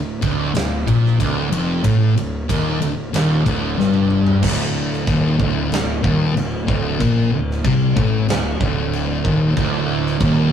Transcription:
0.00 0.21 D1 medium
0.00 0.16 D2 medium
0.21 0.53 D1 medium
0.21 0.53 D2 loud
0.21 kick loud
0.21 ride medium
0.54 0.86 D1 medium
0.54 0.81 D2 medium
0.54 snare loud
0.54 ride medium
0.86 1.18 A#1 medium
0.86 1.18 A#2 loud
0.86 kick loud
0.86 ride medium
1.06 snare soft
1.19 1.50 D1 medium
1.19 1.51 D2 loud
1.19 kick loud
1.19 ride medium
1.51 1.82 F1 medium
1.51 1.83 F2 loud
1.51 ride medium
1.83 2.15 A1 loud
1.83 2.15 A2 loud
1.83 kick loud
1.83 ride medium
2.16 2.47 D1 medium
2.16 2.43 D2 medium
2.16 ride medium
2.49 2.79 D#1 medium
2.49 2.80 D#2 medium
2.49 kick loud
2.49 ride loud
2.82 3.12 D1 medium
2.82 3.08 D2 medium
2.82 ride medium
3.13 3.44 D#1 medium
3.13 3.45 D#2 loud
3.13 snare loud
3.13 ride medium
3.45 3.76 D1 medium
3.45 3.77 D2 loud
3.45 kick loud
3.45 ride medium
3.78 4.39 G1 medium
3.78 4.42 G2 loud
3.78 snare medium
3.94 high tom medium
4.10 mid tom medium
4.27 floor tom medium
4.42 5.03 D1 loud
4.42 5.06 D2 loud
4.42 kick loud
4.42 crash loud
4.42 crash medium
4.93 snare soft
5.07 5.37 D#1 medium
5.07 5.39 D#2 loud
5.07 kick loud
5.07 crash medium
5.39 5.70 D1 loud
5.39 5.70 D2 loud
5.39 kick loud
5.71 6.01 D1 medium
5.71 5.98 D2 medium
5.71 snare loud
5.71 crash medium
6.03 6.34 D#1 loud
6.03 6.34 D#2 loud
6.03 kick loud
6.36 6.66 D1 medium
6.36 6.62 D2 medium
6.36 crash medium
6.67 6.98 D1 loud
6.67 6.99 D2 loud
6.67 kick loud
7.00 7.30 A#1 loud
7.00 7.31 A#2 loud
7.00 kick loud
7.00 crash medium
7.32 7.63 D1 medium
7.32 7.58 D2 medium
7.51 snare soft
7.65 7.94 C2 medium
7.65 7.96 C3 loud
7.65 kick loud
7.65 crash medium
7.96 8.26 A1 loud
7.96 8.27 A2 loud
7.96 kick loud
8.28 8.58 D1 medium
8.28 8.54 D2 medium
8.28 snare loud
8.28 crash medium
8.60 9.21 D1 loud
8.60 9.24 D2 loud
8.60 kick loud
8.93 crash medium
9.24 9.55 D#1 loud
9.24 9.55 D#2 loud
9.24 kick loud
9.56 10.17 D1 loud
9.56 10.19 D2 loud
9.56 kick loud
9.56 crash medium
10.06 snare soft
10.20 10.50 D#1 medium
10.20 10.52 D#2 loud
10.20 kick loud
10.20 crash medium

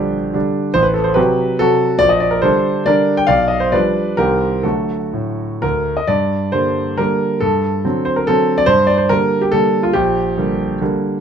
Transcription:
0.00 0.37 A#1 soft
0.00 0.31 D3 soft
0.00 0.31 G3 soft
0.00 0.34 D4 medium
0.00 0.13 G4 medium
0.33 0.71 D3 soft
0.33 0.71 G3 soft
0.33 0.71 D4 medium
0.74 1.16 A1 medium
0.74 0.85 C5 loud
0.83 0.95 B4 medium
0.94 1.06 A4 medium
1.04 1.16 C5 medium
1.14 1.56 C3 soft
1.14 1.56 F#3 medium
1.14 1.56 F#4 medium
1.14 1.56 G4 medium
1.14 1.59 B4 medium
1.59 1.97 C3 soft
1.59 1.98 F#3 soft
1.59 1.99 F#4 medium
1.59 2.01 A4 medium
1.99 2.42 A#1 medium
1.99 2.10 D5 loud
2.09 2.21 D#5 medium
2.20 2.32 D5 medium
2.31 2.43 A#4 medium
2.42 2.83 D3 soft
2.42 2.83 G3 soft
2.42 2.83 D4 medium
2.42 2.84 A4 medium
2.42 2.86 C5 medium
2.86 3.25 D3 soft
2.86 3.25 G3 soft
2.86 3.25 D4 medium
2.86 3.16 A#4 medium
2.86 3.18 D5 medium
3.17 3.28 G5 medium
3.27 3.71 B1 medium
3.27 3.48 D5 medium
3.27 3.49 F5 medium
3.48 3.60 D#5 medium
3.60 3.72 C5 medium
3.72 4.14 F3 soft
3.72 4.15 G3 soft
3.72 4.15 D4 soft
3.72 4.15 B4 medium
3.72 4.18 D5 medium
4.17 4.63 C2 medium
4.17 4.60 D#3 soft
4.17 4.60 G3 soft
4.17 4.61 C4 soft
4.17 4.61 G4 medium
4.17 4.64 A#4 medium
4.63 4.98 D3 soft
4.63 5.03 F#3 soft
4.63 5.03 A3 soft
4.63 5.59 F#4 soft
4.63 5.63 A4 medium
5.13 5.48 A2 soft
5.62 5.95 D2 soft
5.62 5.97 A#4 medium
5.97 6.08 D#5 medium
6.07 6.52 G2 medium
6.07 6.53 D5 medium
6.52 6.95 D3 soft
6.52 6.95 G3 soft
6.52 6.96 A#3 soft
6.52 6.99 C5 medium
6.97 7.37 D3 soft
6.97 7.37 G3 soft
6.97 7.38 A#3 soft
6.97 7.41 A#4 medium
7.40 7.83 G2 medium
7.40 8.06 A4 medium
7.85 8.23 D3 soft
7.85 8.23 F#3 soft
7.85 8.23 C4 soft
8.05 8.16 C5 medium
8.16 8.27 A#4 medium
8.27 8.64 D3 soft
8.27 8.64 F#3 soft
8.27 8.64 C4 medium
8.27 8.57 A4 medium
8.58 8.67 D5 medium
8.66 9.09 G2 medium
8.66 8.87 C5 loud
8.87 8.98 D5 medium
8.98 9.09 C5 medium
9.09 9.49 D3 soft
9.09 9.49 G3 soft
9.09 9.50 A#3 soft
9.09 9.42 A#4 medium
9.41 9.53 G4 medium
9.52 9.90 D3 soft
9.52 9.90 G3 soft
9.52 9.91 A#3 medium
9.52 9.83 A4 medium
9.83 9.94 F4 medium
9.93 10.36 A#1 medium
9.93 10.59 G4 medium
10.38 10.77 D3 soft
10.38 10.77 G3 soft
10.38 10.78 A#3 medium
10.81 11.18 D3 medium
10.81 11.18 G3 soft
10.81 11.18 A#3 medium

